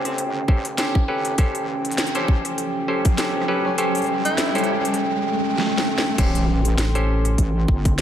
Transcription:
Already playing: clav C#4 G4 A4 C5, analog synth pad C#4 A4 G5, riser
0.05 wobble bass G1, tenor saxophone C4, cross-stick, closed hi-hat
0.18 closed hi-hat
0.48 wobble bass A1, clav C#4 G4 A4 C5, kick
0.65 closed hi-hat
0.78 clav C#4 G4 A4 C5, snare, closed hi-hat
0.95 kick, cross-stick
1.08 wobble bass G1, clav C#4 G4 A4 B4
1.25 closed hi-hat
1.38 wobble bass A1, clav C#4 G4 A4 C5, kick, closed hi-hat
1.55 closed hi-hat
1.85 wobble bass A1, closed hi-hat
1.91 closed hi-hat
1.98 wobble bass A1, snare, closed hi-hat
2.07 closed hi-hat
2.15 clav C#4 G4 A4 C5, closed hi-hat
2.28 kick
2.45 cross-stick, closed hi-hat
2.58 closed hi-hat
2.88 clav C#4 G4 A4 C5
3.05 wobble bass G1, kick, closed hi-hat
3.18 clav C#4 G4 A4 C5, snare, closed hi-hat
3.35 wobble bass C#2
3.42 cross-stick
3.48 clav C#4 G4 A4 B4
3.65 tenor saxophone C#4, cross-stick
3.78 tenor saxophone C#4, clav C#4 G4 A4 C5, closed hi-hat
3.95 closed hi-hat
3.97 closed hi-hat
4.04 closed hi-hat
4.06 wobble bass A1, closed hi-hat
4.25 tenor saxophone E4, closed hi-hat
4.38 snare, closed hi-hat
4.55 wobble bass A1, clav C#4 G4 A4 C5, closed hi-hat
4.58 closed hi-hat
4.64 closed hi-hat
4.85 wobble bass C#2, cross-stick, closed hi-hat
4.88 cross-stick
4.94 cross-stick, closed hi-hat
4.98 swell
5.58 snare
5.78 snare
5.98 snare
6.18 wobble bass A1, analog synth pad C#4 A4 G5 C6, clav C#4 G4 A4 C5, kick, closed hi-hat, crash, impact
6.35 closed hi-hat
6.65 closed hi-hat
6.78 analog synth bass A1, snare, closed hi-hat
6.95 clav C#4 G4 A4 C5, closed hi-hat
7.25 cross-stick, closed hi-hat
7.38 wobble bass A1, kick, closed hi-hat
7.68 wobble bass G1, kick
7.85 kick, closed hi-hat

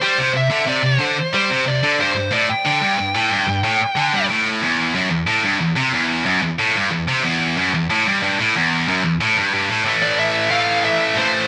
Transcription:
0.02 distorted electric guitar G3, lead electric guitar C5
0.18 distorted electric guitar C3
0.34 distorted electric guitar C3, lead electric guitar E5
0.51 distorted electric guitar D3
0.67 distorted electric guitar C3, lead electric guitar D5
0.84 distorted electric guitar C3, lead electric guitar C5
1.00 distorted electric guitar D3
1.34 distorted electric guitar G3, lead electric guitar C5
1.50 distorted electric guitar C3
1.67 distorted electric guitar C3, lead electric guitar D5
1.84 distorted electric guitar D3
2.00 distorted electric guitar G2, lead electric guitar C5
2.16 distorted electric guitar G2
2.32 distorted electric guitar A2, lead electric guitar D5
2.50 lead electric guitar G5
2.66 distorted electric guitar D3
2.82 distorted electric guitar G2
2.99 distorted electric guitar G2
3.15 distorted electric guitar A2
3.31 distorted electric guitar G2
3.48 distorted electric guitar G2
3.64 distorted electric guitar A2
3.96 distorted electric guitar D3
4.12 distorted electric guitar G2
4.29 distorted electric guitar A2
4.62 distorted electric guitar E2
4.95 distorted electric guitar F#2
5.10 distorted electric guitar E2
5.27 distorted electric guitar A2
5.44 distorted electric guitar G2
5.61 distorted electric guitar E2
5.77 distorted electric guitar C3
5.93 distorted electric guitar E2
6.25 distorted electric guitar F#2
6.42 distorted electric guitar E2
6.59 distorted electric guitar A2
6.76 distorted electric guitar G2
6.92 distorted electric guitar E2
7.08 distorted electric guitar C3
7.23 distorted electric guitar E2
7.58 distorted electric guitar F#2
7.74 distorted electric guitar E2
7.90 distorted electric guitar A2
8.06 distorted electric guitar G2
8.23 distorted electric guitar G2
8.39 distorted electric guitar A2
8.56 distorted electric guitar E2
8.88 distorted electric guitar F#2
9.05 distorted electric guitar E2
9.21 distorted electric guitar A2
9.37 distorted electric guitar G2
9.54 distorted electric guitar G2
9.70 distorted electric guitar A2
9.85 distorted electric guitar A2 E3 A3
10.02 lead electric guitar D5
10.19 lead electric guitar E5
10.50 distorted electric guitar A2 E3 A3, lead electric guitar F5
10.85 lead electric guitar E5
11.15 distorted electric guitar A2 E3, lead electric guitar C5
11.19 distorted electric guitar A3

